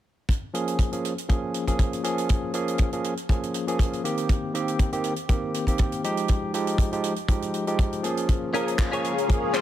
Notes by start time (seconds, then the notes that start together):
0.29 kick, closed hi-hat
0.53 F3 A#3 C#4 G#4, closed hi-hat
0.68 closed hi-hat
0.79 kick, closed hi-hat
0.92 F3 A#3 C#4 G#4, closed hi-hat
1.05 closed hi-hat
1.18 closed hi-hat
1.28 F3 A#3 C#4 G#4, kick, closed hi-hat
1.54 closed hi-hat
1.67 F3 A#3 C#4 G#4, kick, closed hi-hat
1.79 kick, closed hi-hat
1.93 closed hi-hat
2.03 F3 A#3 C#4 G#4, closed hi-hat
2.18 closed hi-hat
2.29 kick, closed hi-hat
2.54 F3 A#3 C#4 G#4, closed hi-hat
2.68 closed hi-hat
2.78 kick, closed hi-hat
2.92 F3 A#3 C#4 G#4, closed hi-hat
3.04 closed hi-hat
3.17 closed hi-hat
3.29 F3 A#3 C#4 G#4, kick, closed hi-hat
3.43 closed hi-hat
3.54 closed hi-hat
3.67 F3 A#3 C#4 G#4, closed hi-hat
3.79 kick, closed hi-hat
3.93 closed hi-hat
4.04 D#3 A#3 C4 G4, closed hi-hat
4.17 closed hi-hat
4.29 kick, closed hi-hat
4.54 D#3 A#3 C4 G4, closed hi-hat
4.68 closed hi-hat
4.79 kick, closed hi-hat
4.92 D#3 A#3 C4 G4, closed hi-hat
5.04 closed hi-hat
5.16 closed hi-hat
5.28 D#3 A#3 C4 G4, kick, closed hi-hat
5.54 closed hi-hat
5.67 D#3 A#3 C4 G4, kick, closed hi-hat
5.78 kick, closed hi-hat
5.92 closed hi-hat
6.04 F3 G#3 D#4 G4, closed hi-hat
6.17 closed hi-hat
6.28 kick, closed hi-hat
6.54 F3 G#3 D#4 G4, closed hi-hat
6.67 closed hi-hat
6.78 kick, closed hi-hat
6.92 F3 G#3 D#4 G4, closed hi-hat
7.04 closed hi-hat
7.16 closed hi-hat
7.28 F3 G#3 D#4 G4, kick, closed hi-hat
7.42 closed hi-hat
7.54 closed hi-hat
7.67 F3 G#3 D#4 G4, closed hi-hat
7.79 kick, closed hi-hat
7.93 closed hi-hat
8.03 F3 A#3 C#4 G#4, closed hi-hat
8.17 closed hi-hat
8.29 C#4 G#4 A#4 F5, kick, closed hi-hat
8.53 F3 A#3 C#4 G#4 A#4, closed hi-hat
8.68 closed hi-hat
8.79 kick, clap, closed hi-hat
8.92 F3 A#3 C#4 G#4 C#5, closed hi-hat
9.04 closed hi-hat
9.18 closed hi-hat
9.28 F3 A#3 C#4 G#4, kick, closed hi-hat
9.54 C#4 G#4 C5, clap, closed hi-hat